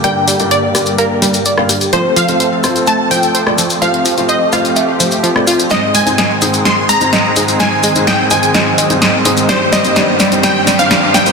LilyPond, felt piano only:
\new Staff \with { instrumentName = "Felt piano" } { \time 4/4 \key f \mixolydian \tempo 4 = 127 <g, bes d' g' d''>8 r16 <g, bes d' g' d''>8. <g, bes d' g' d''>4 <g, bes d' g' d''>16 r8 <g, bes d' g' f''>16 r8 | <a c' f' c''>8 r16 <a c' f' c''>8. <a c' f' c''>4 <a c' f' c''>16 r8 <a c' f' d''>16 r8 | <a c' f' c''>8 r16 <a c' f' c''>8. <a c' f' c''>4 <a c' f' c''>16 r8 <a c' f' d''>16 r8 | <aes, aes c' ees' c''>8 r16 <aes, aes c' ees' c''>8. <aes, aes c' ees' c''>8 <aes, aes c' ees' c''>8 r16 <aes, aes c' ees' c''>8. <aes, aes c' ees' c''>8 |
<aes, aes c' ees' c''>8 r16 <aes, aes c' ees' c''>8. <aes, aes c' ees' c''>8 <aes, aes c' ees' c''>8 r16 <aes, aes c' ees' c''>8. <aes, aes c' ees' c''>8 | <g, g c'>8 r16 <g, g c' ees' c''>16 <g, g c' ees' c''>8 r16 <g, g c' ees' c''>16 <g, g c' ees' c''>8 r16 <g, g c' ees' c''>16 <g, g c' ees' c''>8 r16 <g, g c' ees' c''>16 | }